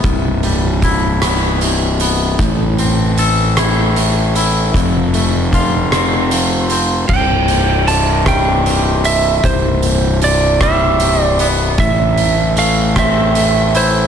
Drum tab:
CC |------|------|------|x-----|
HH |xxxxxx|xxxxxx|xxxxxx|-xxxxx|
SD |---r--|---r--|---r--|---r--|
BD |o-o---|o-----|o-o---|o--o--|

CC |------|------|
HH |xxxxxx|xxxxxx|
SD |---r--|---r--|
BD |o--o--|o--o--|